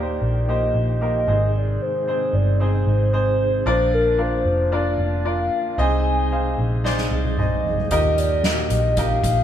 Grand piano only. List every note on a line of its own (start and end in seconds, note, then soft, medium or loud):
0.00 0.18 A#2 medium
0.00 0.48 A#3 medium
0.00 0.49 D#4 medium
0.00 0.49 G4 medium
0.00 1.02 A#4 medium
0.00 0.42 C5 medium
0.48 0.92 A#3 medium
0.48 0.92 D#4 medium
0.48 0.92 G4 medium
0.48 0.92 C5 medium
1.01 1.28 A#3 medium
1.01 1.26 D#4 medium
1.01 1.28 G4 medium
1.01 1.28 A#4 medium
1.27 2.03 G#2 soft
1.27 2.03 D#3 soft
1.27 1.92 C4 medium
1.27 1.92 D#4 soft
1.27 1.93 G#4 medium
1.27 1.93 C5 medium
2.08 2.51 C4 medium
2.08 2.51 D#4 medium
2.08 2.51 G#4 medium
2.08 2.51 C5 medium
2.60 3.03 C4 medium
2.60 3.04 D#4 medium
2.60 3.04 G#4 medium
2.60 3.04 C5 medium
3.13 3.56 C4 medium
3.13 3.56 D#4 medium
3.13 3.57 G#4 medium
3.13 3.57 C5 medium
3.66 4.42 A#2 medium
3.66 4.42 F3 medium
3.66 4.09 D4 medium
3.66 4.10 F4 medium
3.66 4.10 A#4 medium
3.66 4.10 D5 medium
4.18 4.62 D4 medium
4.18 4.62 F4 medium
4.18 4.62 A#4 medium
4.18 4.62 F5 medium
4.72 5.15 D4 medium
4.72 5.16 F4 medium
4.72 5.16 A#4 medium
4.72 5.16 D5 medium
5.25 5.69 D4 medium
5.25 5.69 F4 medium
5.25 5.69 A#4 medium
5.25 5.69 D5 medium
5.78 6.54 C3 medium
5.78 6.54 C4 medium
5.78 6.22 D#4 medium
5.78 6.22 G#4 medium
5.78 6.22 C5 medium
5.78 6.22 D#5 loud
6.31 6.75 D#4 medium
6.31 6.75 G#4 medium
6.31 6.75 C5 medium
6.31 6.75 F5 medium
6.84 7.28 D#4 medium
6.84 7.28 G#4 medium
6.84 7.28 C5 medium
6.84 7.28 D5 medium
7.38 7.81 D#4 medium
7.38 7.81 G#4 medium
7.38 7.81 C5 soft
7.38 7.82 D#5 medium
7.91 8.67 A#2 medium
7.91 8.34 D#4 medium
7.91 8.34 G4 medium
7.91 8.35 A#4 medium
7.91 8.35 D#5 loud
8.45 8.88 D#4 medium
8.45 8.51 F#4 soft
8.45 8.88 A#4 medium
8.45 8.88 D#5 medium
8.52 8.91 G4 medium
8.98 9.41 D#4 medium
8.98 9.41 G4 medium
8.98 9.41 A#4 medium
8.98 9.41 D#5 medium